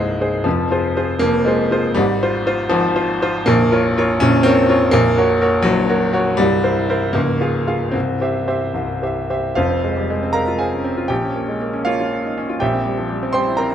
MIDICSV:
0, 0, Header, 1, 2, 480
1, 0, Start_track
1, 0, Tempo, 504626
1, 428, Time_signature, 6, 3, 24, 8
1, 3788, Tempo, 481928
1, 6188, Tempo, 509338
1, 7148, Tempo, 535714
1, 9548, Tempo, 506757
1, 11468, Tempo, 487409
1, 13075, End_track
2, 0, Start_track
2, 0, Title_t, "Grand piano"
2, 0, Program_c, 0, 0
2, 0, Control_c, 0, 64, 127
2, 0, Note_on_c, 0, 24, 82
2, 0, Note_on_c, 0, 36, 80
2, 0, Note_on_c, 0, 56, 112
2, 0, Note_on_c, 0, 58, 100
2, 0, Note_on_c, 0, 63, 64
2, 0, Note_on_c, 0, 68, 60
2, 0, Note_on_c, 0, 72, 68
2, 168, Note_off_c, 0, 63, 0
2, 170, Note_off_c, 0, 68, 0
2, 175, Note_off_c, 0, 72, 0
2, 194, Note_on_c, 0, 63, 66
2, 201, Note_on_c, 0, 68, 71
2, 205, Note_on_c, 0, 72, 71
2, 407, Note_off_c, 0, 63, 0
2, 411, Note_off_c, 0, 68, 0
2, 413, Note_off_c, 0, 72, 0
2, 418, Note_on_c, 0, 53, 97
2, 425, Note_off_c, 0, 56, 0
2, 435, Note_on_c, 0, 41, 84
2, 438, Note_on_c, 0, 29, 80
2, 447, Control_c, 0, 64, 0
2, 450, Note_off_c, 0, 36, 0
2, 453, Note_off_c, 0, 24, 0
2, 455, Note_off_c, 0, 58, 0
2, 622, Control_c, 0, 64, 127
2, 664, Note_off_c, 0, 41, 0
2, 666, Note_off_c, 0, 29, 0
2, 674, Note_on_c, 0, 65, 68
2, 680, Note_on_c, 0, 68, 70
2, 683, Note_on_c, 0, 72, 74
2, 887, Note_off_c, 0, 65, 0
2, 890, Note_off_c, 0, 68, 0
2, 892, Note_off_c, 0, 72, 0
2, 918, Note_on_c, 0, 65, 76
2, 920, Note_on_c, 0, 68, 75
2, 922, Note_on_c, 0, 72, 82
2, 1132, Note_off_c, 0, 65, 0
2, 1133, Note_off_c, 0, 68, 0
2, 1134, Note_off_c, 0, 72, 0
2, 1135, Note_on_c, 0, 58, 120
2, 1145, Note_off_c, 0, 53, 0
2, 1153, Note_on_c, 0, 29, 89
2, 1154, Note_on_c, 0, 41, 80
2, 1378, Note_on_c, 0, 56, 90
2, 1385, Note_off_c, 0, 58, 0
2, 1387, Note_off_c, 0, 29, 0
2, 1387, Note_off_c, 0, 41, 0
2, 1395, Note_on_c, 0, 65, 68
2, 1399, Note_on_c, 0, 68, 70
2, 1403, Note_on_c, 0, 72, 77
2, 1609, Note_off_c, 0, 65, 0
2, 1611, Note_off_c, 0, 68, 0
2, 1613, Note_off_c, 0, 72, 0
2, 1627, Note_on_c, 0, 65, 76
2, 1631, Note_on_c, 0, 68, 73
2, 1637, Note_on_c, 0, 72, 84
2, 1841, Note_off_c, 0, 65, 0
2, 1843, Note_off_c, 0, 68, 0
2, 1846, Note_off_c, 0, 72, 0
2, 1850, Note_on_c, 0, 55, 124
2, 1859, Note_off_c, 0, 56, 0
2, 1870, Note_on_c, 0, 32, 91
2, 1872, Note_on_c, 0, 44, 86
2, 1883, Control_c, 0, 64, 0
2, 2009, Control_c, 0, 64, 127
2, 2098, Note_off_c, 0, 32, 0
2, 2099, Note_off_c, 0, 44, 0
2, 2118, Note_on_c, 0, 72, 84
2, 2119, Note_on_c, 0, 65, 75
2, 2325, Note_off_c, 0, 65, 0
2, 2325, Note_off_c, 0, 72, 0
2, 2344, Note_on_c, 0, 65, 85
2, 2348, Note_on_c, 0, 72, 88
2, 2555, Note_off_c, 0, 65, 0
2, 2557, Note_off_c, 0, 72, 0
2, 2563, Note_on_c, 0, 53, 118
2, 2568, Note_off_c, 0, 55, 0
2, 2575, Note_on_c, 0, 32, 95
2, 2575, Note_on_c, 0, 44, 99
2, 2811, Note_off_c, 0, 32, 0
2, 2811, Note_off_c, 0, 44, 0
2, 2813, Note_on_c, 0, 65, 77
2, 2814, Note_on_c, 0, 72, 83
2, 3040, Note_off_c, 0, 65, 0
2, 3041, Note_off_c, 0, 72, 0
2, 3065, Note_on_c, 0, 65, 89
2, 3067, Note_on_c, 0, 72, 93
2, 3288, Note_off_c, 0, 65, 0
2, 3289, Note_off_c, 0, 72, 0
2, 3289, Note_on_c, 0, 58, 122
2, 3306, Note_on_c, 0, 34, 111
2, 3308, Note_off_c, 0, 53, 0
2, 3308, Note_on_c, 0, 22, 94
2, 3334, Control_c, 0, 64, 0
2, 3472, Control_c, 0, 64, 127
2, 3537, Note_on_c, 0, 65, 86
2, 3541, Note_on_c, 0, 70, 86
2, 3542, Note_off_c, 0, 34, 0
2, 3543, Note_off_c, 0, 22, 0
2, 3546, Note_on_c, 0, 73, 87
2, 3755, Note_off_c, 0, 65, 0
2, 3757, Note_off_c, 0, 70, 0
2, 3760, Note_off_c, 0, 73, 0
2, 3780, Note_on_c, 0, 65, 90
2, 3785, Note_on_c, 0, 70, 89
2, 3791, Note_on_c, 0, 73, 98
2, 4000, Note_off_c, 0, 65, 0
2, 4003, Note_off_c, 0, 70, 0
2, 4006, Note_off_c, 0, 73, 0
2, 4006, Note_on_c, 0, 61, 127
2, 4015, Note_off_c, 0, 58, 0
2, 4027, Note_on_c, 0, 34, 104
2, 4028, Note_on_c, 0, 22, 105
2, 4236, Note_on_c, 0, 60, 127
2, 4254, Note_on_c, 0, 65, 78
2, 4256, Note_off_c, 0, 61, 0
2, 4259, Note_off_c, 0, 22, 0
2, 4259, Note_off_c, 0, 34, 0
2, 4261, Note_on_c, 0, 70, 82
2, 4264, Note_on_c, 0, 73, 91
2, 4474, Note_off_c, 0, 65, 0
2, 4478, Note_off_c, 0, 70, 0
2, 4480, Note_off_c, 0, 73, 0
2, 4491, Note_on_c, 0, 65, 85
2, 4494, Note_on_c, 0, 70, 88
2, 4499, Note_on_c, 0, 73, 96
2, 4713, Note_off_c, 0, 65, 0
2, 4714, Note_off_c, 0, 70, 0
2, 4715, Note_on_c, 0, 58, 127
2, 4717, Note_off_c, 0, 73, 0
2, 4729, Note_off_c, 0, 60, 0
2, 4735, Note_on_c, 0, 34, 113
2, 4737, Note_on_c, 0, 22, 94
2, 4763, Control_c, 0, 64, 0
2, 4929, Control_c, 0, 64, 127
2, 4970, Note_off_c, 0, 34, 0
2, 4971, Note_off_c, 0, 22, 0
2, 4975, Note_on_c, 0, 66, 80
2, 4981, Note_on_c, 0, 70, 85
2, 4983, Note_on_c, 0, 73, 88
2, 5190, Note_off_c, 0, 66, 0
2, 5193, Note_off_c, 0, 70, 0
2, 5194, Note_off_c, 0, 73, 0
2, 5213, Note_on_c, 0, 66, 87
2, 5216, Note_on_c, 0, 70, 89
2, 5222, Note_on_c, 0, 73, 92
2, 5424, Note_on_c, 0, 54, 127
2, 5427, Note_off_c, 0, 66, 0
2, 5429, Note_off_c, 0, 70, 0
2, 5432, Note_off_c, 0, 73, 0
2, 5438, Note_off_c, 0, 58, 0
2, 5442, Note_on_c, 0, 22, 100
2, 5446, Note_on_c, 0, 34, 103
2, 5680, Note_off_c, 0, 22, 0
2, 5682, Note_off_c, 0, 34, 0
2, 5686, Note_on_c, 0, 66, 80
2, 5694, Note_on_c, 0, 73, 81
2, 5695, Note_on_c, 0, 70, 80
2, 5910, Note_off_c, 0, 66, 0
2, 5914, Note_off_c, 0, 73, 0
2, 5915, Note_off_c, 0, 70, 0
2, 5928, Note_on_c, 0, 66, 87
2, 5930, Note_on_c, 0, 70, 84
2, 5940, Note_on_c, 0, 73, 88
2, 6157, Note_off_c, 0, 66, 0
2, 6158, Note_off_c, 0, 70, 0
2, 6164, Note_off_c, 0, 73, 0
2, 6166, Note_on_c, 0, 55, 127
2, 6174, Note_off_c, 0, 54, 0
2, 6183, Note_on_c, 0, 24, 96
2, 6187, Note_on_c, 0, 36, 100
2, 6207, Control_c, 0, 64, 0
2, 6364, Control_c, 0, 64, 127
2, 6413, Note_on_c, 0, 64, 72
2, 6417, Note_off_c, 0, 24, 0
2, 6418, Note_on_c, 0, 70, 74
2, 6419, Note_off_c, 0, 36, 0
2, 6421, Note_on_c, 0, 72, 80
2, 6634, Note_off_c, 0, 64, 0
2, 6637, Note_off_c, 0, 70, 0
2, 6639, Note_off_c, 0, 72, 0
2, 6660, Note_on_c, 0, 64, 81
2, 6665, Note_on_c, 0, 72, 83
2, 6666, Note_on_c, 0, 70, 80
2, 6878, Note_off_c, 0, 64, 0
2, 6881, Note_off_c, 0, 70, 0
2, 6881, Note_off_c, 0, 72, 0
2, 6883, Note_on_c, 0, 58, 108
2, 6895, Note_off_c, 0, 55, 0
2, 6899, Note_on_c, 0, 25, 85
2, 6899, Note_on_c, 0, 37, 94
2, 6919, Control_c, 0, 64, 0
2, 7088, Control_c, 0, 64, 127
2, 7138, Note_off_c, 0, 25, 0
2, 7138, Note_off_c, 0, 37, 0
2, 7142, Note_on_c, 0, 65, 66
2, 7148, Note_on_c, 0, 68, 68
2, 7151, Note_on_c, 0, 77, 70
2, 7357, Note_off_c, 0, 65, 0
2, 7360, Note_off_c, 0, 68, 0
2, 7362, Note_off_c, 0, 77, 0
2, 7381, Note_on_c, 0, 65, 66
2, 7384, Note_on_c, 0, 68, 67
2, 7386, Note_on_c, 0, 77, 75
2, 7598, Note_off_c, 0, 65, 0
2, 7600, Note_off_c, 0, 68, 0
2, 7601, Note_off_c, 0, 77, 0
2, 7601, Note_on_c, 0, 60, 84
2, 7613, Note_off_c, 0, 58, 0
2, 7617, Note_on_c, 0, 24, 72
2, 7619, Note_on_c, 0, 36, 83
2, 7642, Control_c, 0, 64, 0
2, 7820, Control_c, 0, 64, 127
2, 7854, Note_off_c, 0, 24, 0
2, 7855, Note_off_c, 0, 36, 0
2, 7866, Note_on_c, 0, 67, 64
2, 7870, Note_on_c, 0, 72, 59
2, 7873, Note_on_c, 0, 76, 67
2, 8082, Note_off_c, 0, 67, 0
2, 8084, Note_off_c, 0, 72, 0
2, 8086, Note_off_c, 0, 76, 0
2, 8102, Note_on_c, 0, 67, 65
2, 8104, Note_on_c, 0, 72, 66
2, 8106, Note_on_c, 0, 76, 74
2, 8320, Note_off_c, 0, 67, 0
2, 8321, Note_off_c, 0, 72, 0
2, 8322, Note_off_c, 0, 76, 0
2, 8341, Note_on_c, 0, 36, 72
2, 8345, Note_on_c, 0, 24, 72
2, 8580, Note_off_c, 0, 36, 0
2, 8582, Note_off_c, 0, 24, 0
2, 8597, Note_on_c, 0, 72, 55
2, 8598, Note_on_c, 0, 67, 59
2, 8602, Note_on_c, 0, 76, 62
2, 8817, Note_off_c, 0, 72, 0
2, 8818, Note_off_c, 0, 67, 0
2, 8820, Note_off_c, 0, 76, 0
2, 8827, Note_off_c, 0, 60, 0
2, 8840, Note_on_c, 0, 67, 62
2, 8842, Note_on_c, 0, 72, 61
2, 8846, Note_on_c, 0, 76, 68
2, 9059, Note_off_c, 0, 67, 0
2, 9060, Note_off_c, 0, 72, 0
2, 9062, Note_off_c, 0, 76, 0
2, 9068, Note_on_c, 0, 77, 94
2, 9076, Note_on_c, 0, 65, 71
2, 9078, Note_on_c, 0, 29, 74
2, 9078, Note_on_c, 0, 72, 68
2, 9085, Note_on_c, 0, 41, 81
2, 9098, Control_c, 0, 64, 0
2, 9200, Note_on_c, 0, 60, 65
2, 9254, Control_c, 0, 64, 127
2, 9327, Note_on_c, 0, 56, 63
2, 9387, Note_off_c, 0, 60, 0
2, 9436, Note_on_c, 0, 55, 60
2, 9507, Note_off_c, 0, 56, 0
2, 9550, Note_off_c, 0, 55, 0
2, 9559, Note_on_c, 0, 56, 73
2, 9680, Note_on_c, 0, 60, 67
2, 9747, Note_off_c, 0, 56, 0
2, 9749, Note_off_c, 0, 65, 0
2, 9750, Note_off_c, 0, 72, 0
2, 9772, Note_off_c, 0, 77, 0
2, 9773, Note_on_c, 0, 82, 105
2, 9786, Note_on_c, 0, 70, 78
2, 9786, Note_on_c, 0, 77, 77
2, 9797, Note_on_c, 0, 56, 72
2, 9867, Note_off_c, 0, 60, 0
2, 9913, Note_on_c, 0, 65, 65
2, 9986, Note_off_c, 0, 56, 0
2, 10011, Note_off_c, 0, 70, 0
2, 10011, Note_off_c, 0, 77, 0
2, 10018, Note_on_c, 0, 80, 75
2, 10021, Note_off_c, 0, 82, 0
2, 10027, Note_on_c, 0, 77, 55
2, 10029, Note_on_c, 0, 68, 61
2, 10037, Note_on_c, 0, 60, 63
2, 10103, Note_off_c, 0, 65, 0
2, 10154, Note_on_c, 0, 61, 60
2, 10224, Note_off_c, 0, 60, 0
2, 10262, Note_on_c, 0, 60, 72
2, 10270, Note_off_c, 0, 61, 0
2, 10385, Note_on_c, 0, 65, 71
2, 10456, Note_off_c, 0, 60, 0
2, 10466, Note_off_c, 0, 29, 0
2, 10469, Note_off_c, 0, 41, 0
2, 10471, Note_off_c, 0, 77, 0
2, 10472, Note_off_c, 0, 68, 0
2, 10488, Note_on_c, 0, 79, 93
2, 10500, Note_off_c, 0, 80, 0
2, 10502, Note_on_c, 0, 67, 76
2, 10504, Note_on_c, 0, 34, 84
2, 10505, Note_off_c, 0, 65, 0
2, 10522, Control_c, 0, 64, 0
2, 10621, Note_on_c, 0, 61, 62
2, 10661, Control_c, 0, 64, 127
2, 10744, Note_on_c, 0, 58, 61
2, 10815, Note_off_c, 0, 61, 0
2, 10868, Note_on_c, 0, 56, 64
2, 10937, Note_off_c, 0, 58, 0
2, 10988, Note_off_c, 0, 56, 0
2, 10990, Note_on_c, 0, 58, 71
2, 11105, Note_on_c, 0, 61, 69
2, 11183, Note_off_c, 0, 58, 0
2, 11190, Note_off_c, 0, 67, 0
2, 11213, Note_on_c, 0, 77, 102
2, 11221, Note_off_c, 0, 79, 0
2, 11221, Note_on_c, 0, 73, 76
2, 11225, Note_on_c, 0, 65, 75
2, 11229, Note_on_c, 0, 58, 72
2, 11300, Note_off_c, 0, 61, 0
2, 11343, Note_off_c, 0, 65, 0
2, 11357, Note_on_c, 0, 65, 68
2, 11421, Note_off_c, 0, 58, 0
2, 11480, Note_on_c, 0, 61, 66
2, 11546, Note_off_c, 0, 65, 0
2, 11600, Note_on_c, 0, 63, 59
2, 11669, Note_off_c, 0, 61, 0
2, 11716, Note_off_c, 0, 63, 0
2, 11724, Note_on_c, 0, 61, 72
2, 11839, Note_on_c, 0, 65, 70
2, 11907, Note_off_c, 0, 73, 0
2, 11909, Note_off_c, 0, 61, 0
2, 11911, Note_off_c, 0, 34, 0
2, 11943, Note_off_c, 0, 77, 0
2, 11945, Note_on_c, 0, 79, 94
2, 11954, Note_on_c, 0, 67, 73
2, 11955, Note_off_c, 0, 65, 0
2, 11958, Note_on_c, 0, 76, 75
2, 11963, Note_on_c, 0, 34, 85
2, 11970, Control_c, 0, 64, 0
2, 12077, Note_on_c, 0, 60, 68
2, 12103, Control_c, 0, 64, 127
2, 12192, Note_on_c, 0, 55, 67
2, 12267, Note_off_c, 0, 60, 0
2, 12316, Note_on_c, 0, 53, 62
2, 12384, Note_off_c, 0, 55, 0
2, 12430, Note_on_c, 0, 55, 68
2, 12434, Note_off_c, 0, 53, 0
2, 12562, Note_on_c, 0, 60, 72
2, 12623, Note_off_c, 0, 55, 0
2, 12634, Note_off_c, 0, 67, 0
2, 12636, Note_off_c, 0, 76, 0
2, 12658, Note_off_c, 0, 79, 0
2, 12659, Note_on_c, 0, 84, 102
2, 12672, Note_on_c, 0, 72, 75
2, 12673, Note_on_c, 0, 79, 81
2, 12676, Note_on_c, 0, 55, 69
2, 12749, Note_off_c, 0, 60, 0
2, 12804, Note_on_c, 0, 64, 68
2, 12865, Note_off_c, 0, 55, 0
2, 12894, Note_off_c, 0, 72, 0
2, 12894, Note_off_c, 0, 79, 0
2, 12898, Note_on_c, 0, 82, 96
2, 12904, Note_off_c, 0, 84, 0
2, 12911, Note_on_c, 0, 70, 70
2, 12915, Note_on_c, 0, 79, 75
2, 12920, Note_on_c, 0, 60, 67
2, 12988, Note_off_c, 0, 64, 0
2, 13032, Note_on_c, 0, 61, 64
2, 13075, Note_off_c, 0, 34, 0
2, 13075, Note_off_c, 0, 60, 0
2, 13075, Note_off_c, 0, 61, 0
2, 13075, Note_off_c, 0, 70, 0
2, 13075, Note_off_c, 0, 79, 0
2, 13075, Note_off_c, 0, 82, 0
2, 13075, End_track
0, 0, End_of_file